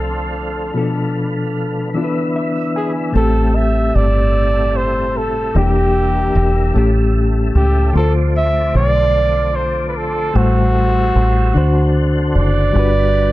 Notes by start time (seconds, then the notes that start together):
Already playing: C2 D3 F3 A3 C4 D4 F4 A4
0.73 B2 F3 B3 D4
0.78 A4
1.94 D3 E3 B3 D4 E4 F4
2.04 B4
2.36 E5
2.76 G#4 G#5
3.12 A1 A2 C3 G3 A3 E4
3.17 C4 G4 A4
3.56 E5
3.95 G1 D5
4.77 C5
5.17 A4
5.53 E1 D3 E3 A#3
5.57 D4 G4
6.35 E1
6.74 A1 A2 C#3 A3 C#4
6.78 G4
7.55 C#2 G4
7.93 D2 D3 F3 A3 C4 D4 F4
7.97 A4 C5
8.37 E5
8.75 B1 D5
9.56 C5
9.89 B4
9.97 A4
10.33 A1 A2 G3 A3 E4 F#4 C5
11.16 A1
11.53 D2 D3 A3 C4 D4 F#4
11.58 C5
12.35 F#1 D5
12.73 G1 G3 B3 D4
12.77 F#4 B4